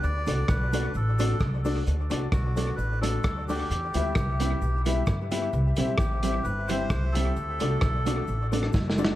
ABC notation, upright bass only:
X:1
M:4/4
L:1/8
Q:"Swing" 1/4=131
K:Dmix
V:1 name="Upright bass" clef=bass
D,, C,, B,,,2 A,,,2 C,,2 | D,, C,, B,,,2 A,,,2 D,,2 | E,, D,, C,,2 B,,,2 G,,2 | C,, B,,, A,,,2 G,,,2 C,,2 |
D,, C,, B,,,2 A,,,2 F,,,2 |]